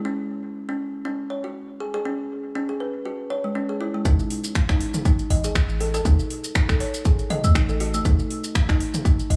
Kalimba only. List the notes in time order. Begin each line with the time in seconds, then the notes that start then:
0.05 C#4
0.69 C#4
1.05 C#4
1.30 C#5
1.44 F#4
1.80 G#4
1.94 G#4
2.05 C#4
2.55 C#4
2.69 G#4
2.80 B4
3.05 F#4
3.30 C#5
3.44 G#3
3.55 C#4
3.69 G#4
3.81 E4
3.94 G#3
4.06 D#4
4.69 D#4
5.06 D#4
5.30 D#5
5.44 G#4
5.80 A4
5.94 A4
6.05 D#4
6.55 D#4
6.69 A4
6.80 C#5
7.05 G#4
7.30 D#5
7.44 A3
7.55 D#4
7.69 A4
7.80 F#4
7.94 A3
8.05 D#4
8.69 D#4
9.05 D#4
9.30 D#5